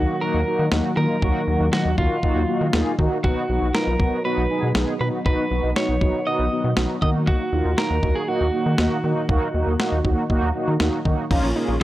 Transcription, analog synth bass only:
0.34 D#2
0.59 D#3
0.72 D#2
0.97 D#3
1.22 D#2
1.47 D#2
1.60 D#2
1.85 D#2
1.98 D#2
2.36 D#2
2.61 D#3
2.74 D#2
2.99 D#3
3.24 B1
3.49 B1
3.62 B1
3.87 B1
4.00 B1
4.37 B1
4.63 B2
4.75 B1
5.00 B2
5.26 B1
5.51 B1
5.64 B1
5.89 B1
6.01 B1
6.39 B1
6.64 B2
6.77 B1
7.02 D#3
7.53 D#2
7.65 D#2
7.90 D#2
8.03 D#2
8.41 D#2
8.66 D#3
8.79 D#2
9.04 D#3
9.29 D#2
9.54 D#2
9.67 D#2
9.92 D#2
10.05 D#2
10.42 D#2
10.68 D#3
10.80 D#2
11.05 D#3
11.31 A#1
11.43 A#1
11.68 A#1

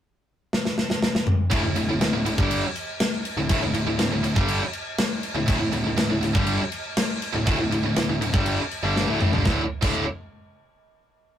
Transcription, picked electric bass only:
1.51 D1
1.62 D1
1.75 D1
1.87 D1
2.00 D1
2.11 D1
2.25 D1
2.38 G1
3.37 D1
3.50 D1
3.61 D1
3.74 D1
3.86 D1
3.99 D1
4.10 D1
4.23 D1
4.36 G1
5.35 D1
5.48 D1
5.60 D1
5.72 D1
5.84 D1
5.98 D1
6.09 D1
6.22 D1
6.34 G1
7.34 D1
7.47 D1
7.59 D1
7.71 D1
7.84 D1
7.95 D1
8.08 D1
8.21 D1
8.33 G1
8.83 G1
9.08 D1
9.20 A1
9.32 G1
9.45 D1
9.82 D1

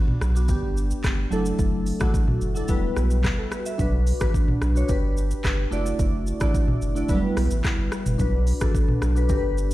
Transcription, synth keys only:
Already playing: B3 D4 F#4
0.35 B3 D4 F#4
0.48 B3 D4 G4
1.30 F#3 A3 D4 E4 A4
1.99 F#3 A3 D4 E4 F#4
2.55 F#3 A3 D4 E4 A4
2.68 G3 B3 E4 F#4 B4
3.38 E4 A4
3.52 F#4 B4
3.66 B4 E5
3.78 D4 F#4 B4
4.20 D4 F#4 B4
4.75 D4 F#4 C#5
4.88 D4 G4 B4
5.71 A3 D4 E4 F#4 D5
6.40 A3 D4 E4 F#4 D5
6.95 A3 D4 E4 F#4 D5
7.08 F#3 B3 E4 F#4 B4
7.14 G3
8.18 D4 F#4 B4
8.60 D4 F#4 A4
9.15 D4 F#4 B4
9.28 D4 G4 A#4
9.37 B4

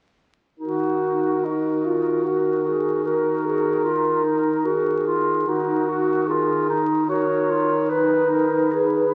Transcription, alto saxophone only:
0.61 F#4
1.45 D#4
1.85 F4
2.26 F#4
2.67 G#4
3.06 A#4
4.67 G#4
5.48 F#4
6.27 G#4
7.09 A#4
7.90 B4

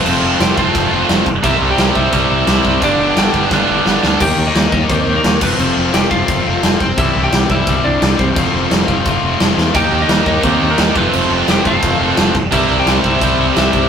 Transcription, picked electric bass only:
0.05 F1
0.22 F1
0.40 F1
0.57 F1
0.75 F1
0.91 F1
1.09 F1
1.26 F1
1.44 C2
1.61 C2
1.78 C2
1.96 C2
2.13 C2
2.30 C2
2.47 C2
2.65 C2
2.82 G1
2.99 G1
3.17 G1
3.34 G1
3.51 G1
3.69 G1
3.86 G1
4.04 D2
4.21 D#2
4.38 D#2
4.55 D#2
4.72 D#2
4.90 D#2
5.07 D#2
5.24 D#2
5.42 F1
5.59 F1
5.77 F1
5.94 F1
6.11 F1
6.28 F1
6.46 F1
6.63 F1
6.80 F1
6.98 C2
7.15 C2
7.32 C2
7.50 C2
7.67 C2
7.85 C2
8.02 C2
8.19 C2
8.36 F1
8.54 F1
8.71 F1
8.88 F1
9.06 F1
9.23 F1
9.41 F1
9.57 E2
9.75 D#2
9.92 D#2
10.09 D#2
10.26 D#2
10.44 D#2
10.61 D#2
10.78 D#2
10.96 F1
11.14 F1
11.31 F1
11.48 F1
11.65 F1
11.83 F1
12.00 F1
12.18 F1
12.35 F1
12.52 C2
12.69 C2
12.86 C2
13.04 C2
13.22 C2
13.39 C2
13.56 C2
13.73 C2

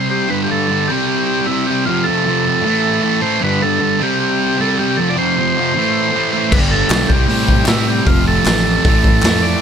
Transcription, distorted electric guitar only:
Already playing: C3 G3 C4
0.28 G2 D3 G3
0.49 G3
0.53 D3
0.68 G2 D3 G3
0.89 C3 G3 C4
1.48 C3 G3
1.52 C4
1.67 C4
1.71 G3
1.86 F2 C3 F3
2.06 F3
2.11 C3
2.25 F2 C3
2.30 F3
2.46 C3 F3
2.62 A2 E3
2.67 A3
3.01 A2 E3 A3
3.21 E3 A3
3.41 G2 D3
3.45 G3
3.61 D3 G3
3.79 G2 D3 G3
4.00 C3 G3 C4
4.58 C3 G3 C4
4.79 G3 C4
4.98 F2 C3 F3
5.17 C3 F3
5.38 F2 C3 F3
5.57 C3 F3
5.75 A2 E3 A3
6.12 A2 E3
6.16 A3
6.33 E3 A3
6.54 G2 D3 G3
6.72 D3 G3
6.93 G2 D3
6.97 G3
7.12 C3 G3 C4
7.67 C3 G3 C4
7.87 G3 C4
8.05 F2 C3
8.09 F3
8.23 C3 F3
8.43 F2 C3 F3
8.63 F3
8.68 C3
8.84 A2 E3 A3
9.22 A2 E3 A3
9.42 A3
9.46 E3

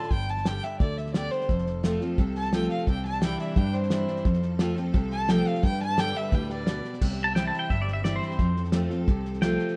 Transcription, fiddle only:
Already playing: A5
0.11 G5
0.30 A5
0.46 G5
0.64 E5
0.80 D5
0.97 E5
1.14 D5
1.31 C5
2.37 A5
2.54 G5
2.71 F5
2.88 G5
3.05 A5
3.23 G5
3.40 E5
3.57 G5
3.73 C5
5.12 A5
5.29 G5
5.48 F5
5.64 G5
5.82 A5
5.99 G5
6.17 E5
6.34 G5
6.52 D5

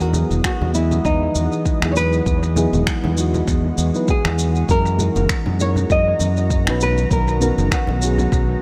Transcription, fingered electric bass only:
Already playing: E2
0.30 E1
0.61 E2
1.05 E2
1.35 E2
1.82 E2
2.26 E2
2.73 E1
3.04 E2
3.48 E2
3.78 E2
4.25 E2
4.69 F#2
5.16 F#1
5.46 F#2
5.90 F#2
6.20 F#2
6.67 B1
7.11 B1
7.58 F#1
7.88 B1
8.32 B1

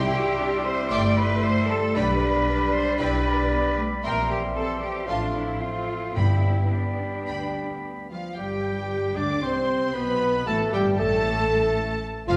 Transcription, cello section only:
Already playing: G4
0.65 C5
0.91 D5
1.17 B4
1.43 C5
1.68 A4
1.94 B4
2.73 C5
2.99 B4
4.04 A#4
4.31 G4
4.56 A4
4.82 G4
5.07 F4
5.33 E4
5.61 F4
6.16 E4
6.72 D4
8.10 F3
8.37 G3
9.16 D4
9.43 C4
9.95 B3
10.47 A3
10.73 G3
10.99 A3
12.28 F3

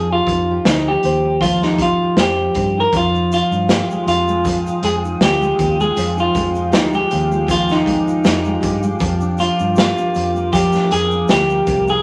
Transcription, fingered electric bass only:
Already playing: F2
0.27 F2
0.65 D2
1.04 D#2
2.16 F2
2.55 G2
2.93 F2
3.51 G2
4.07 F2
4.83 F2
5.21 D2
5.59 D#2
5.97 F2
6.35 F2
6.74 D2
7.13 D#2
8.26 F2
8.63 G2
9.00 F2
9.60 G2
10.16 F2
10.92 F2
11.30 D2
11.67 C2

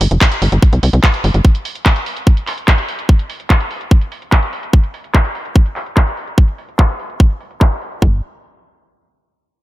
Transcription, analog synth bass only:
0.01 G1
0.11 F1
0.42 G1
0.52 G1
0.73 C2
0.83 C2
0.93 C2
1.24 G1
1.34 G1
8.02 G1

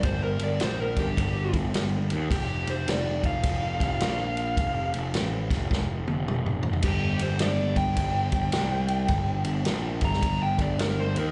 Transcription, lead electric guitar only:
0.04 C5
0.23 A#4
0.43 D5
0.63 C5
0.80 A#4
0.99 G4
2.32 G4
2.70 C5
2.89 D5
3.26 F5
6.85 G4
7.22 C5
7.41 D5
7.77 G5
10.05 A#5
10.43 G5
10.61 D5
10.79 A#4
10.99 C5
11.18 A#4

